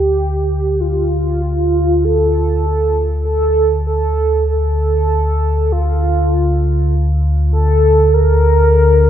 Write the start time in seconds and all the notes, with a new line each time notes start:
Already playing: D2 D3 G4
0.81 F4
2.04 A4
3.25 A4
3.87 A4
4.49 A4
5.72 F4
7.53 A4
8.13 A#4